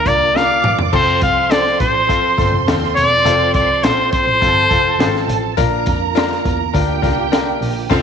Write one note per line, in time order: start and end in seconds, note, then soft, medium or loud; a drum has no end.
0.00 0.90 D3 medium
0.00 0.90 A#3 medium
0.00 0.90 F4 medium
0.00 0.32 A#4 medium
0.00 0.32 A#5 medium
0.06 0.51 C2 medium
0.06 0.27 D4 medium
0.06 0.27 F4 medium
0.06 0.27 A#4 medium
0.06 0.37 D5 loud
0.06 kick medium
0.06 closed hi-hat medium
0.34 0.76 D4 medium
0.34 0.76 F4 medium
0.34 0.76 A#4 medium
0.34 0.92 D5 medium
0.34 0.79 F5 loud
0.34 0.92 D6 medium
0.34 snare medium
0.64 0.87 A#1 medium
0.64 mid tom loud
0.79 floor tom loud
0.93 1.22 F1 loud
0.93 5.54 F3 medium
0.93 1.34 C4 loud
0.93 5.54 C4 medium
0.93 1.34 F4 medium
0.93 1.35 A4 loud
0.93 5.54 A4 medium
0.93 4.38 C5 medium
0.93 1.21 C5 loud
0.93 4.38 C6 medium
0.93 kick loud
0.93 crash medium
1.21 1.67 C2 medium
1.21 1.52 F5 loud
1.21 kick loud
1.21 closed hi-hat medium
1.49 1.92 C4 medium
1.49 1.92 F4 medium
1.49 1.92 A4 medium
1.49 1.80 D5 loud
1.49 snare loud
1.49 closed hi-hat medium
1.67 snare soft
1.80 2.14 A1 medium
1.80 2.64 C5 loud
1.80 kick loud
1.80 closed hi-hat loud
2.08 2.30 C4 medium
2.08 2.30 F4 medium
2.08 2.30 A4 medium
2.08 kick medium
2.08 closed hi-hat medium
2.37 2.50 G1 medium
2.37 2.59 C4 medium
2.37 2.59 F4 medium
2.37 2.59 A4 medium
2.37 kick loud
2.37 snare soft
2.37 closed hi-hat medium
2.53 2.64 F1 loud
2.67 2.90 D#2 loud
2.67 3.09 C4 medium
2.67 3.09 F4 medium
2.67 3.09 A4 medium
2.67 snare loud
2.67 closed hi-hat loud
2.84 snare soft
2.96 3.19 E1 medium
2.96 3.50 D5 loud
2.96 closed hi-hat medium
3.25 3.48 F1 loud
3.25 3.67 C4 loud
3.25 3.67 F4 medium
3.25 3.67 A4 loud
3.25 closed hi-hat loud
3.54 3.83 C2 loud
3.54 3.85 D5 loud
3.54 kick loud
3.54 closed hi-hat medium
3.83 4.17 A#1 medium
3.83 4.25 C4 medium
3.83 4.25 F4 medium
3.83 4.25 A4 medium
3.83 4.12 C5 medium
3.83 snare loud
3.83 closed hi-hat medium
4.12 5.25 C5 loud
4.12 kick loud
4.12 closed hi-hat medium
4.27 4.39 A1 medium
4.41 4.65 G1 loud
4.41 4.62 C4 medium
4.41 4.63 F4 medium
4.41 5.55 A4 medium
4.41 4.63 A4 medium
4.41 5.55 A5 medium
4.41 kick medium
4.41 closed hi-hat medium
4.70 4.93 F1 medium
4.70 4.91 C4 medium
4.70 4.92 F4 medium
4.70 4.92 A4 medium
4.70 kick medium
4.70 closed hi-hat medium
4.99 5.22 G#1 loud
4.99 5.41 C4 medium
4.99 5.41 F4 medium
4.99 5.07 G#4 medium
4.99 snare loud
4.99 closed hi-hat loud
5.06 5.45 A4 medium
5.16 snare soft
5.29 5.51 A1 medium
5.29 closed hi-hat medium
5.57 5.81 A#1 loud
5.57 7.88 D3 medium
5.57 7.88 A#3 medium
5.57 5.99 D4 loud
5.57 5.99 F4 loud
5.57 7.88 F4 medium
5.57 5.99 A#4 loud
5.57 6.72 A#4 medium
5.57 6.72 A#5 medium
5.57 kick loud
5.57 closed hi-hat loud
5.86 6.32 F2 loud
5.86 kick medium
5.86 closed hi-hat medium
6.15 6.57 D4 loud
6.15 6.57 F4 medium
6.15 6.57 A#4 loud
6.15 snare loud
6.15 closed hi-hat medium
6.32 snare soft
6.45 6.68 E2 medium
6.45 kick loud
6.45 closed hi-hat medium
6.73 6.97 D2 loud
6.73 6.95 D4 medium
6.73 6.95 F4 medium
6.73 7.89 G4 medium
6.73 6.95 A#4 medium
6.73 7.89 G5 loud
6.73 kick medium
6.73 closed hi-hat loud
7.02 7.48 C2 medium
7.02 7.24 D4 medium
7.02 7.24 F4 medium
7.02 7.24 A#4 medium
7.02 kick loud
7.02 snare soft
7.02 closed hi-hat medium
7.32 7.74 D4 medium
7.32 7.74 F4 medium
7.32 7.74 A#4 loud
7.32 snare loud
7.32 closed hi-hat loud
7.61 7.84 A#1 medium
7.61 open hi-hat medium
7.90 8.02 F1 loud
7.90 8.02 F3 medium
7.90 8.02 C4 loud
7.90 8.02 C4 medium
7.90 8.02 F4 loud
7.90 8.02 A4 loud
7.90 8.02 A4 medium
7.90 8.02 F5 medium
7.90 kick loud
7.90 snare loud
7.90 crash medium